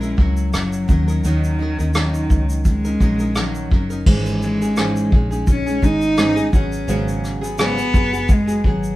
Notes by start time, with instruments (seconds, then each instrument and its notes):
Already playing: fingered electric bass A#1, cello G#3
0.01 nylon-string guitar C#4 E4 A#4, shaker
0.17 fingered electric bass C#2, nylon-string guitar F#3 C#4 E4 A#4, cello F#3, kick
0.37 shaker
0.53 fingered electric bass F#1, nylon-string guitar F#3 C#4 E4 A#4, cross-stick, shaker
0.73 shaker
0.88 fingered electric bass D#2, nylon-string guitar F#3 C#4 D#4 A#4, kick, shaker
1.08 nylon-string guitar C#4 D#4 A#4, shaker
1.24 fingered electric bass D#2, nylon-string guitar D#3 F#3 C#4 D#4 A#4, cello D#3, shaker
1.44 shaker
1.59 nylon-string guitar F#3 C#4 D#4 A#4
1.79 fingered electric bass D#2, nylon-string guitar C#4 D#4 A#4, shaker
1.94 nylon-string guitar D#3 F#3 C#4 D#4 A#4, cello D#3, cross-stick, shaker
2.14 shaker
2.30 fingered electric bass C#2, kick, shaker
2.50 shaker
2.65 cello G#3, kick, shaker
2.85 nylon-string guitar C#4 D#4 A#4, shaker
3.00 fingered electric bass A#1, nylon-string guitar F#3 C#4 D#4 A#4, kick, shaker
3.19 nylon-string guitar C#4 D#4 A#4, shaker
3.35 nylon-string guitar D#3 F#3 C#4 D#4 A#4, cello F#3, cross-stick, shaker
3.55 shaker
3.71 fingered electric bass F#1, nylon-string guitar F#3 C#4 D#4 A#4, kick
3.90 nylon-string guitar C#4 D#4 A#4, shaker
4.06 fingered electric bass G#1, nylon-string guitar G#2 E3 G#3 C#4 D#4 G#4, kick, crash
4.26 shaker
4.42 cello G#3, shaker
4.61 nylon-string guitar G#3 C#4 D#4 G#4, shaker
4.76 nylon-string guitar G#2 E3 G#3 C#4 D#4 G#4, cross-stick, shaker
4.96 shaker
5.11 fingered electric bass A#1, nylon-string guitar G#3 C#4 D#4 G#4, kick
5.30 nylon-string guitar G#3 C#4 D#4 G#4, shaker
5.47 cello C#4, kick, shaker
5.66 nylon-string guitar G#3 C#4 D#4 G#4, shaker
5.82 fingered electric bass G#1, nylon-string guitar G#3 C#4 D#4 G#4, cello D#4, kick, shaker
6.02 shaker
6.17 nylon-string guitar G#2 E3 G#3 C#4 D#4 G#4, cross-stick, shaker
6.36 nylon-string guitar G#3 C#4 D#4 G#4, shaker
6.52 fingered electric bass G#1, nylon-string guitar F#3 B3 F#4 G#4, cello C#4, kick, shaker
6.72 shaker
6.88 fingered electric bass G#1, nylon-string guitar G#2 C#3 F#3 B3 F#4 G#4, shaker
7.08 shaker
7.24 cross-stick, shaker
7.41 nylon-string guitar F#3 B3 F#4 G#4, shaker
7.58 nylon-string guitar G#2 C#3 F#3 B3 F#4 G#4, cross-stick, shaker
7.62 cello B3
7.77 nylon-string guitar F#3 B3 F#4 G#4, shaker
7.93 fingered electric bass F#1, nylon-string guitar F#3 B3 F#4 G#4, kick, shaker
8.12 nylon-string guitar F#3 B3 F#4 G#4, shaker
8.29 cello G#3, kick, shaker
8.47 nylon-string guitar F#3 B3 F#4 G#4, shaker
8.64 fingered electric bass G#1, nylon-string guitar F#3 B3 F#4 G#4, cello F#3, kick
8.83 shaker